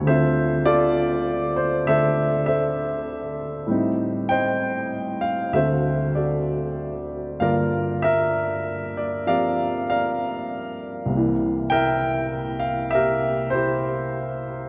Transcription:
0.00 3.66 D2 soft
0.00 1.84 D3 soft
0.07 3.68 C4 soft
0.07 0.64 F4 medium
0.07 0.65 A4 medium
0.07 1.55 C5 medium
0.07 0.62 E5 medium
0.66 2.44 F4 medium
0.66 1.87 A4 medium
0.66 1.60 D5 loud
1.56 1.63 C5 medium
1.85 3.68 D3 soft
1.85 3.69 A3 soft
1.85 2.46 A4 medium
1.85 2.47 C5 medium
1.85 2.45 E5 loud
2.46 3.65 A4 soft
2.46 3.65 C5 medium
2.46 3.34 E5 medium
3.67 5.52 A2 medium
3.67 5.53 G3 soft
3.67 5.52 C4 soft
3.72 5.55 D#4 medium
4.29 5.50 C5 medium
4.29 5.50 D#5 medium
4.29 5.18 G5 medium
5.21 5.51 F5 medium
5.53 7.41 D2 soft
5.53 7.39 D3 soft
5.53 7.41 C4 soft
5.53 6.15 F#4 soft
5.53 6.15 A4 medium
5.53 7.38 C5 medium
5.53 5.67 E5 medium
6.15 7.38 F#4 soft
6.15 7.38 A4 soft
6.15 7.05 D5 medium
7.40 11.10 G2 soft
7.40 11.10 D3 soft
7.40 11.11 A#3 soft
7.40 11.11 F4 soft
7.40 8.03 A#4 medium
7.40 8.96 D5 medium
7.40 7.54 F5 medium
8.02 9.26 A#4 medium
8.02 8.92 E5 medium
8.97 9.26 D5 medium
9.27 11.10 F3 soft
9.27 11.11 C4 soft
9.27 11.12 G4 soft
9.27 9.89 A#4 medium
9.27 9.89 D5 medium
9.27 9.84 F5 medium
9.90 11.08 A#4 medium
9.90 11.07 D5 soft
9.90 10.77 F5 medium
11.06 14.69 C2 soft
11.06 14.69 C3 soft
11.13 14.69 E3 medium
11.13 14.69 A#3 soft
11.70 12.93 A#4 medium
11.70 12.89 E5 medium
11.70 12.58 G5 loud
12.60 12.93 F5 medium
12.91 13.54 E5 medium
12.95 13.53 G4 medium
12.95 14.69 A#4 medium
13.50 14.38 C5 medium
13.55 14.69 E4 soft
13.55 14.69 G4 soft

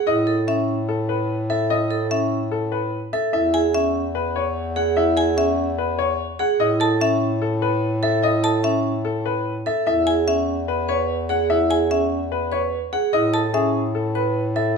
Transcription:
0.00 0.13 G#4 medium
0.00 0.13 F#5 medium
0.07 3.21 A2 medium
0.07 0.33 E4 medium
0.07 0.33 D#5 medium
0.27 0.54 A4 medium
0.48 0.74 C#4 medium
0.48 0.74 E5 medium
0.89 1.15 A4 medium
1.09 1.35 B4 medium
1.50 1.76 A4 medium
1.50 1.76 E5 medium
1.70 1.97 E4 medium
1.70 1.97 D#5 medium
1.91 2.17 A4 medium
2.11 2.37 C#4 medium
2.11 2.38 E5 medium
2.51 2.78 A4 medium
2.72 2.99 B4 medium
3.13 3.40 A4 medium
3.13 3.32 E5 medium
3.33 6.48 E2 medium
3.33 3.60 E4 medium
3.33 3.60 E5 medium
3.54 3.80 G#4 medium
3.54 3.80 G#5 medium
3.74 4.01 C#4 medium
3.74 4.01 E5 medium
4.15 4.42 B4 medium
4.36 4.62 C#5 medium
4.76 5.03 G#4 medium
4.76 5.03 F#5 medium
4.96 5.23 E4 medium
4.96 5.23 E5 medium
5.17 5.43 G#4 medium
5.17 5.44 G#5 medium
5.37 5.64 C#4 medium
5.37 5.64 E5 medium
5.78 6.05 B4 medium
5.99 6.25 C#5 medium
6.39 6.66 G#4 medium
6.39 6.66 F#5 medium
6.60 9.74 A2 medium
6.60 6.86 E4 medium
6.60 6.86 D#5 medium
6.80 7.07 A4 medium
6.80 7.07 A5 medium
7.01 7.27 C#4 medium
7.01 7.28 E5 medium
7.42 7.68 A4 medium
7.62 7.89 B4 medium
8.03 8.29 A4 medium
8.03 8.29 E5 medium
8.23 8.50 E4 medium
8.23 8.50 D#5 medium
8.43 8.70 A4 medium
8.43 8.70 A5 medium
8.64 8.90 C#4 medium
8.64 8.91 E5 medium
9.05 9.31 A4 medium
9.26 9.52 B4 medium
9.66 9.93 A4 medium
9.66 9.85 E5 medium
9.87 13.01 E2 medium
9.87 10.13 E4 medium
9.87 10.13 E5 medium
10.07 10.33 G#4 medium
10.07 10.33 G#5 medium
10.27 10.54 C#4 medium
10.27 10.54 E5 medium
10.68 10.95 B4 medium
10.89 11.15 B4 medium
10.89 11.15 C#5 medium
11.29 11.56 G#4 medium
11.29 11.56 F#5 medium
11.50 11.76 E4 medium
11.50 11.76 E5 medium
11.70 11.97 G#4 medium
11.70 11.97 G#5 medium
11.91 12.17 C#4 medium
11.91 12.17 E5 medium
12.32 12.58 B4 medium
12.52 12.78 B4 medium
12.52 12.78 C#5 medium
12.93 13.19 G#4 medium
12.93 13.19 F#5 medium
13.13 14.77 A2 medium
13.13 13.40 E4 medium
13.13 13.40 D#5 medium
13.33 13.60 A4 medium
13.33 13.60 A5 medium
13.54 13.80 C#4 medium
13.54 13.80 G#4 medium
13.54 13.80 E5 medium
13.95 14.21 A4 medium
14.15 14.42 B4 medium
14.56 14.77 A4 medium
14.56 14.77 E5 medium

